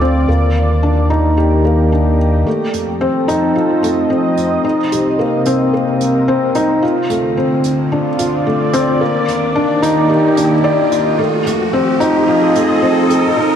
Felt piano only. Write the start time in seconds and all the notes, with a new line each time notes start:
Already playing: A3 D4 F4
0.00 C4
0.28 A#3
0.83 D4
1.10 D#4
1.37 G4
1.65 A#3
1.92 D4
2.47 A3
3.01 C4
3.28 D#4
3.55 F4
3.83 A3
4.10 C4
4.64 D#4
4.92 G4
5.19 A#3
5.46 C4
5.74 A#3
6.28 C4
6.55 D#4
6.82 F4
7.10 A3
7.37 C4
7.92 D4
8.19 F4
8.47 A3
8.73 C4
9.01 A#3
9.55 D4
9.82 D#4
10.10 G4
10.37 D4
10.64 D5
11.19 A3
11.46 A3
11.73 C4
12.00 D#4
12.28 F4
12.55 A3
12.82 C4
13.37 D#4